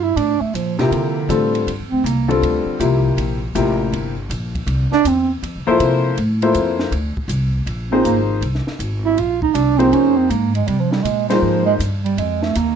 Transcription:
Already playing: G2
0.03 E4
0.16 A2 D4, ride
0.41 A3, muted upright bass stroke
0.54 A#2 F3, hi-hat pedal, ride
0.79 C3 F3 A#3 E4 G4, snare, ride
0.91 C3 D3, ride
1.29 A2 D3 G3 C4 F4 A4, hi-hat pedal, ride
1.55 ride
1.67 G2, ride
1.79 F2
1.91 D2 C4
2.04 C2 A#3, hi-hat pedal, ride
2.28 D3 G3 C4 F4 A4, ride
2.42 D2, ride
2.66 muted upright bass stroke
2.80 C2 C3 F3 A#3 E4 G4, hi-hat pedal, ride
3.17 A#1, ride
3.55 A1 C3 F3 A#3 E4 G4, hi-hat pedal, ride
3.92 G1, ride
4.30 A#1, hi-hat pedal, ride
4.55 kick, ride
4.67 C2, ride
4.92 D4, muted upright bass stroke, snare
5.05 E2 C4, hi-hat pedal, ride
5.43 F2, ride
5.56 C2
5.67 A1 F3 A#3 E4 A4 C5
5.80 C3, hi-hat pedal, ride
6.17 A2, ride
6.42 F3 A#3 E4 A4 C5, ride
6.54 F2, hi-hat pedal, ride
6.79 snare
6.92 D2, ride
7.17 kick
7.28 C2, hi-hat pedal, ride
7.66 A#1, ride
7.92 F3 A#3 C4 D#4 G#4 C5
8.04 G#1 A#3, hi-hat pedal, ride
8.41 C2, ride
8.55 snare
8.67 muted upright bass stroke, snare
8.79 G#1, hi-hat pedal, ride
9.05 E4
9.18 A#1 F4, ride
9.42 D#4, kick
9.54 C2 D4, hi-hat pedal, ride
9.78 F3 A#3 C4 D#4 G#4 C5, ride
9.92 F2 C#4, ride
10.18 C4
10.30 G#2 A#3, hi-hat pedal, ride
10.55 G#3, ride
10.67 C3 G3, ride
10.80 F3
10.92 G3, snare
11.04 A#2 G#3, hi-hat pedal, ride
11.28 F3 G3 A#3 D#4 G#4 C5, snare, ride
11.42 G#2 F3
11.66 G#3
11.79 G2, hi-hat pedal, ride
12.04 G3, ride
12.17 F2 G#3, ride
12.42 A3, snare
12.55 D#2 A#3, hi-hat pedal, ride

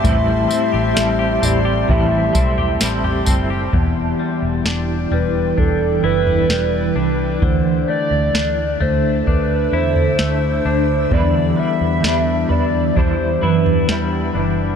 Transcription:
Already playing: D3 A3 C4 G4 A5 C6
0.03 A1 A2 E3 G3 C4 E4 G4 A4 E5, kick, floor tom, tambourine
0.27 G3
0.48 C4 E4 A4, tambourine
0.52 G3 C4
0.72 A1 G4
0.94 A1 G3 C4 E4, snare, tambourine
1.00 A4
1.19 G4
1.41 A1 C4 E4 A4 D5, floor tom, tambourine
1.45 G3 C4
1.65 G4
1.87 A1 A2 E3 G3 C4 E4 E5, kick, floor tom
1.92 A4
2.12 G3
2.33 B1 C4 E4 A4, kick, tambourine
2.39 G3
2.58 G4, floor tom
2.79 A1 G3 C4, snare, tambourine
2.83 E4 A4
3.04 G4, floor tom
3.25 F#1 C4 E4 A4, kick, tambourine
3.29 G3 C4
3.50 G4
3.73 E1 E2 E3 E4 D5 G5, kick, floor tom
4.19 G3
4.42 E1
4.65 E1 D4, snare
5.11 E1 G3 B4, floor tom
5.58 E1 D4 A4, kick, floor tom
6.03 F#1 E4 B4
6.27 floor tom
6.49 E1 G3, snare
6.96 C2 D4
7.42 D2 D3 D4 A4 C5 E5, kick, floor tom
7.88 A3 D5
8.11 D2
8.34 D2 D4, snare
8.80 D2 A3 C5, floor tom
9.26 D2 D4 B4, kick, floor tom
9.73 E2 E4 C5
9.96 floor tom
10.19 D2 A3, snare
10.65 D2 D4
11.10 E2 E3 G3 D4 E4 G4 D5, kick, floor tom
11.15 B4
11.56 G3 E4 B4 E5
11.62 D4
11.81 E2
12.02 E2 G3 D4, snare
12.06 E4 B4
12.49 E2 E4 B4 D5, floor tom
12.55 D4
12.96 E2 E3 G3 D4 E4 C5 F#5, kick, floor tom
13.41 F#2 E4 B4
13.48 D4
13.66 floor tom
13.87 E2 G3 D4, snare
13.91 E4 B4
14.34 F#1 D4 E4 B4
14.39 D4

